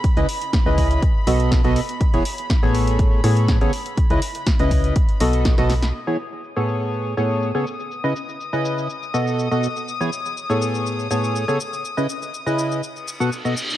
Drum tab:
CC |----------------|----------------|----------------|x---------------|
HH |xxoxx-oxx-oxxxox|xxoxx-oxx-oxxxox|xxoxxxoxxxoxxxox|----------------|
SH |----------------|----------------|----------------|--xxxxxxxxxxxxxx|
SD |----o-------o---|----o-------o---|----o-------oooo|----------------|
BD |o---o-o-o---o---|o---o---o---o---|o---o-o-o---o---|----------------|

CC |----------------|----------------|----------------|
HH |----------------|----------------|----------------|
SH |xxxxxxxxxxxxxxxx|xxxxxxxxxxxxxxxx|xxxxxxxxxxxxxxxx|
SD |----------------|----------------|----------------|
BD |----------------|----------------|----------------|